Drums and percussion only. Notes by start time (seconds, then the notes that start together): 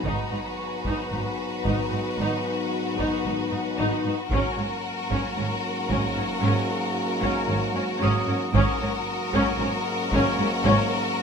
0.04 taiko
0.85 taiko
1.65 taiko
2.99 taiko
4.31 taiko
5.11 taiko
5.90 taiko
7.23 taiko
8.54 taiko
9.33 taiko
10.12 taiko